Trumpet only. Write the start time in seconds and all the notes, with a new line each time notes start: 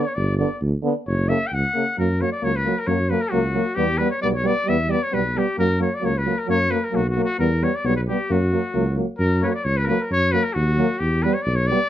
0.03 C#5
0.15 D5
0.37 D5
1.07 C#5
1.29 E5
1.47 G5
1.54 F#5
1.99 A#4
2.21 C#5
2.32 D5
2.44 C#5
2.56 B4
2.79 A#4
2.87 C#5
3.10 B4
3.21 A#4
3.31 F#4
3.75 G4
3.98 B4
4.11 C#5
4.22 D5
4.35 C#5
4.47 D5
4.69 E5
4.91 D5
5.03 C#5
5.14 B4
5.38 G4
5.59 A#4
5.82 C#5
5.95 D5
6.05 C#5
6.18 B4
6.39 A#4
6.50 C#5
6.71 B4
6.84 A#4
6.95 F#4
7.09 F#4
7.25 F#4
7.40 A#4
7.64 C#5
7.75 D5
7.86 C#5
7.96 B4
8.08 G4
8.32 F#4
9.17 A#4
9.42 B4 C#5
9.49 C#5
9.54 D5
9.64 C#5
9.77 B4
9.84 A#4 B4
10.00 A#4
10.12 C#5
10.32 B4
10.44 A#4
10.53 F#4
10.99 G4
11.23 B4
11.34 C#5
11.42 D5
11.55 C#5
11.67 D5